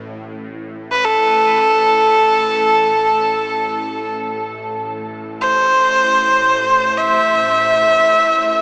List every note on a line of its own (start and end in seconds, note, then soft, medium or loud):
0.00 4.37 A1 medium
0.00 4.36 A2 medium
0.92 1.06 B4 medium
1.05 4.15 A4 medium
4.37 8.62 A1 medium
4.37 8.62 A2 medium
5.41 6.99 C5 medium
6.97 8.62 E5 medium